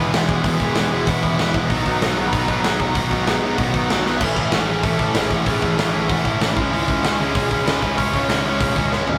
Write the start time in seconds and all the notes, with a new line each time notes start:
Already playing: E1 E2 B2 E3 E4 B4 B5
0.00 E2 B2 E3 G#3 B3
0.11 E1 E2 B2 E3 G#3 B3 E4 G#4 G#5, snare, open hi-hat
0.29 E1 E2 B2 E3 G#3 B3 E4, kick
0.35 F#4 F#5
0.43 E1 E2 B2 E3 G#3 B3 E4 G#4 G#5, kick, open hi-hat
0.60 E1 E2 B2 E3 G#3 B3 E4, kick
0.74 E1 E2 B2 E3 G#4 G#5, snare, open hi-hat
0.78 G#3 B3 E4
0.91 E1 E2 B2 E3 G#3 B3 E4
1.05 E1 E2 B2 E3 G#3 B3 E4 F#4 F#5, kick, open hi-hat
1.21 E1 E3 G#3 B3 E4 E5, kick
1.25 E2 B2
1.39 E1 E2 B2 E3 G#3 B3 E4, snare, open hi-hat
1.54 E1 E2 B2 E3 G#3 B3 E4, kick
1.67 B1 B2 D#3 F#3 B3 D#4 D#5, kick, open hi-hat
1.85 B1 B2 D#3 F#3 B3 D#4, kick
1.97 B2 F#4 F#5
2.02 B1 D#3 F#3 B3 D#4, snare, open hi-hat
2.13 G#4 G#5
2.17 B1 B2 D#3 F#3 B3 D#4
2.27 B4 B5
2.33 B1 B2 D#3 F#3 B3 D#4, kick, open hi-hat
2.48 B1 B2 D#3 F#3 B3 D#4, kick
2.60 G#4 G#5, open hi-hat
2.64 B1 B2 D#3 F#3 B3 D#4, snare
2.79 B1 B2 D#3 F#3 B3 D#4, kick
2.84 F#5
2.88 F#4
2.92 B1 B2 F#4 F#5, kick, open hi-hat
2.96 D#3 F#3 B3 D#4
3.11 B1 B2 D#3 F#3 B3 D#4, kick
3.23 B2 G#5, open hi-hat
3.27 B1 D#3 F#3 B3 D#4 G#4, snare
3.43 B1 B2 D#3 F#3 B3 D#4
3.55 B1 B2 D#3 F#4 F#5, kick, open hi-hat
3.59 F#3 B3 D#4
3.70 B1 F#4 F#5
3.74 B2 D#3 F#3 B3 D#4, kick
3.90 B1 B2 D#3 F#3 B3 D#4, snare, open hi-hat
4.06 B1 B2 D#3 F#3 B3 D#4, snare
4.17 E5, crash
4.21 A1 A2 E3 A3 C#4 E4, kick
4.36 A1 A2 E3 A3 C#4 E4, kick
4.48 F#5, open hi-hat
4.52 A1 A2 E3 A3 C#4 E4 F#4, snare
4.63 G#4 G#5
4.69 A1 A2 E3 A3 C#4 E4
4.80 A1 A5, kick, open hi-hat
4.84 A2 E3 A3 C#4 E4 A4
4.96 A1 A4 A5, kick
5.01 A2 E3 A3 C#4 E4
5.13 A1 A2 E3 A3 C#4 E4 G#4 G#5, snare, open hi-hat
5.31 A1 A2 E3 A3 C#4 E4, kick
5.36 F#4 F#5
5.44 A1 A2 E3 A3 C#4 G#4 G#5, kick, open hi-hat
5.48 E4
5.62 A1 A2 E3 A3 C#4 E4, kick
5.75 A1 A2 E3 A3 C#4 E4 G#4 G#5, snare, open hi-hat
5.93 A1 A2 E3 A3 C#4 E4
6.08 A1 A2 E3 A3 C#4 E4 F#4 F#5, kick, open hi-hat
6.23 A1 A2 E3 A3 C#4 E4 E5, kick
6.41 A1 A2 E3 A3 C#4 E4, snare, open hi-hat
6.57 C#2 C#3 G#3 C#4 E4, kick
6.71 C#2 C#3 G#3 C#4 E4 E5, open hi-hat
6.88 C#2 C#3 G#3 C#4 E4, kick
7.02 C#2 C#3 G#3 C#4 E4 F#4 F#5, snare, open hi-hat
7.18 C#2 C#3 G#3 C#4 E4 G#4 G#5
7.35 C#2 C#3 G#3 C#4 E4, kick, open hi-hat
7.51 C#2 C#3 G#3 C#4 E4, kick
7.65 C#2 C#3 G#3 C#4 E4 B4 B5, snare, open hi-hat
7.81 C#2 C#3 G#3 C#4 E4, kick
7.97 C#2 C#3 G#3 C#4 E4 C#5 C#6, kick, open hi-hat
8.13 C#2 C#3 G#3 C#4 E4, kick
8.29 C#2 C#3 G#3 C#4 E4, snare, open hi-hat
8.45 C#2 C#3 G#3 C#4 E4
8.60 C#2 C#3 G#3 C#4 E4, kick, open hi-hat
8.75 C#2 C#3 G#3 C#4 E4, kick
8.92 C#2 C#3 G#3 C#4 E4, snare
9.07 C#2 C#3 G#3 C#4 E4, floor tom